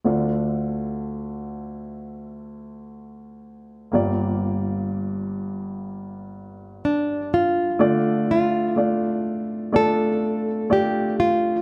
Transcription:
X:1
M:4/4
L:1/8
Q:1/4=62
K:Dm
V:1 name="Nylon-string guitar"
z8 | z6 D F- | F F3 A2 G F |]
V:2 name="Grand piano"
[A,DFd]8 | [B,FGd]8 | [A,DFd]2 [A,DFd]2 [A,DFd]2 [A,DFd]2 |]
V:3 name="Grand piano" clef=bass
[D,,D,]8 | [G,,,G,,]8 | D,3 z4 z |]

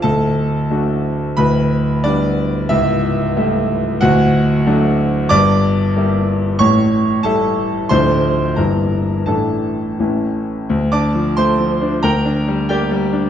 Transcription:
X:1
M:6/8
L:1/8
Q:3/8=91
K:D
V:1 name="Grand piano"
[Aa]6 | [Bb]3 [Dd]3 | [Ee]6 | [Ff]3 z3 |
[K:Dm] [dd']6 | [^c^c']3 [Aa]3 | [cc']3 [Bb]3 | [Aa]4- [Aa] z |
z [dad']2 [cc']3 | [Bgb]3 [Gdg]3 |]
V:2 name="Grand piano" clef=bass
[D,,,D,,]3 [A,DF]3 | [D,,,D,,]3 [G,B,]3 | [C,,,C,,]3 [G,A,E]3 | [D,,,D,,]3 [F,A,D]3 |
[K:Dm] [G,,,G,,]3 [G,B,E]3 | [A,,,A,,]3 [G,A,E]3 | [D,,,D,,F,A,D]3 [G,,,G,,E,B,E]3 | [A,,,A,,E,DE]3 [A,,,A,,E,^CE]3 |
D,, D F, A, F, D | D,, D G, B, G, D |]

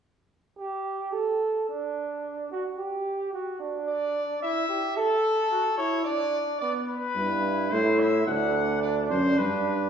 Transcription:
X:1
M:3/4
L:1/8
Q:1/4=109
K:G
V:1 name="Trumpet"
z6 | z6 | z2 d2 e2 | A3 ^c d2 |
d B3 c e | f2 d c B2 |]
V:2 name="Flugelhorn"
z2 G2 A2 | D3 F G2 | F D3 E G | A2 F E D2 |
B, z E4 | D4 D2 |]
V:3 name="Bass trombone" clef=bass
z6 | z6 | z6 | z6 |
z2 G,,2 A,,2 | D,,3 F,, G,,2 |]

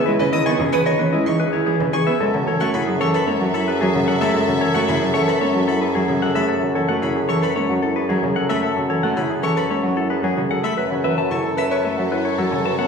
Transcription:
X:1
M:4/4
L:1/16
Q:1/4=112
K:C#m
V:1 name="Violin"
z d d' c' z d' c' z2 c' z4 c' z | [K:F#m] z3 c' b z c' b z2 b z4 b | z3 c' b z c' b z2 b z4 b | z4 b z c' b z6 z b |
z4 b z c' b z6 z b | z4 c' z e' c' z8 |]
V:2 name="Clean electric guitar"
B z d g G z d B d z B c G z g e | [K:F#m] A z c f G z c A c z A B G z f e | A z c f G z c A c z A B G z f e | A z c f G z c A c z A B G z f e |
A z c f G z c A c z A B G z f e | B z e a A z e B e z B c A z a f |]
V:3 name="String section"
z16 | [K:F#m] [Ae]16- | [Ae]12- [Ae]3 z | z16 |
z16 | [Ac]16 |]
V:4 name="Grand piano"
E B E D G B c C E D G E G B G B | [K:F#m] A F A F E G A B C F E G F G A G | A F A F E G A B C F E G F G A G | A F A F E G A B C F E G F G A z |
A F A F E G A B C F E G F G A z | B F B F E A B c z F E z F A B z |]
V:5 name="Cello" clef=bass
G, C, D, B, C, E, D, E, G, E, z D, E, C, E, B, | [K:F#m] G, C, E, A, C, F, E, z G, F, z2 F, C, F, A, | G, C, E, A, C, F, E, z G, F, z2 F, C, F, A, | z C, E, A, C, z E, z G, F, z2 F, C, F, A, |
z C, E, A, C, z E, z G, F, z2 F, C, F, A, | z C, E, z C, z3 A, F, z2 F, C, F, B, |]
V:6 name="Bassoon" clef=bass
C,,16 | [K:F#m] F,,16- | F,,16- | F,,16- |
F,,16 | F,,16 |]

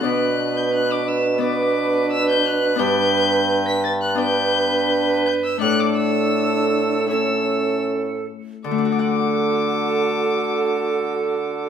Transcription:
X:1
M:4/4
L:1/16
Q:1/4=83
K:D
V:1 name="Violin"
f'3 g' f' d' e'2 d'4 e' g' f'2 | g'4- g' b' a' f' g'6 g' e' | f' d' e'6 e'4 z4 | d'16 |]
V:2 name="Recorder"
B8 B8 | B6 z2 B8 | A8 A6 z2 | A16 |]
V:3 name="Harp"
[B,Dd]8 [B,Dd]8 | [B,Dd]8 [B,Dd]8 | [A,Dd]8 [A,Ec]8- | [A,Ec]16 |]
V:4 name="Harp"
B,,16 | G,,16 | A,,12- A,,2 z2 | [D,A,DFdf]16 |]
V:5 name="Trombone"
D8 D8 | D6 z2 D8 | D8 C6 z2 | F16 |]
V:6 name="Bassoon" clef=bass
B,,16 | G,,12- G,,2 z2 | A,,12- A,,2 z2 | D,16 |]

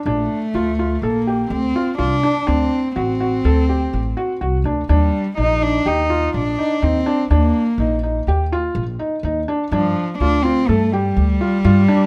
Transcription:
X:1
M:5/4
L:1/8
Q:1/4=124
K:Gm
V:1 name="Felt piano"
D2 F F A G2 F F D | D2 ^F F A G2 F F D | D2 E E G F2 E E D | D2 E E G F2 E E D |
D2 F F A G2 F F D |]
V:2 name="Cello"
A,4 B,2 C2 D2 | C2 C6 z2 | G,2 E D E2 D2 C2 | B,4 z6 |
F,2 D C A, G,4- G, |]
V:3 name="Upright bass" clef=bass
B,,, z D,,2 B,,,2 D,, z C,, z | D,, z A,,,2 D,,2 A,,, z C,, D,, | E,, z B,,,2 E,,2 B,,, z E,, z | E,, z B,,,2 E,,2 B,,, z E,, z |
G,, z D,,2 G,,2 D,, z G,, z |]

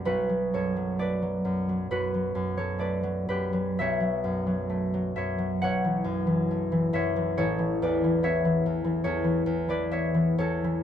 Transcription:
X:1
M:4/4
L:1/16
Q:1/4=67
K:Amix
V:1 name="Harp"
[FB]2 [Ac]2 [Bd]4 [FB]3 [Ac] [Bd]2 [GB]2 | [ce]6 [ce]2 [cf]6 [ce]2 | [Ac]2 [Bd]2 [ce]4 [Ac]3 [Bd] [ce]2 [Ac]2 |]
V:2 name="Harp" clef=bass
[B,,,A,] F, F,, F, A, F, F,, F, F,, F, F,, F, A, F, F,, F, | B,,, F, F,, F, A, F, F,, F, B,,, E, F,, E, A, E, F,, E, | A,,, E, E,, E, B, E, E,, E, E,, E, E,, E, B, E, E,, E, |]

